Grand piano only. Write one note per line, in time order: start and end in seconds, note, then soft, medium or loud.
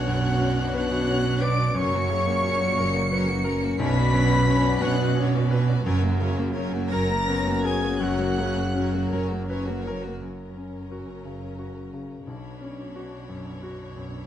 0.00 1.71 B1 medium
0.07 0.61 F#2 medium
0.39 0.94 C#4 medium
0.74 1.28 B4 medium
1.08 1.42 C#5 medium
1.41 1.75 B4 medium
1.75 3.74 F#2 medium
2.09 2.64 C#3 medium
2.43 2.97 C#4 medium
2.78 3.32 A#4 medium
3.11 3.45 B4 medium
3.44 3.79 A#4 medium
3.79 5.82 B1 medium
4.13 4.68 F#2 medium
4.47 5.03 C#4 medium
4.82 5.38 B4 medium
5.16 5.51 C#5 medium
5.51 5.86 B4 medium
5.86 7.98 F#2 medium
6.21 6.78 C#3 medium
6.56 7.14 C#4 medium
6.92 7.50 A#4 medium
7.28 7.65 B3 medium
7.64 8.24 A#4 medium
8.00 10.18 F#2 medium
8.38 8.98 C#3 medium
8.74 9.34 C#4 medium
9.12 9.72 A#4 medium
9.50 9.87 B4 soft
9.87 10.23 A#4 medium
10.22 12.24 F#2 soft
10.56 11.12 C#4 soft
10.92 11.46 F#4 soft
11.25 11.80 C#3 soft
11.59 12.14 F#4 soft
11.93 12.27 C#3 soft
12.27 14.26 B1 soft
12.61 13.15 C#4 soft
12.96 13.49 F#4 soft
13.29 13.83 F#2 soft
13.63 14.17 F#4 soft
13.96 14.27 F#2 soft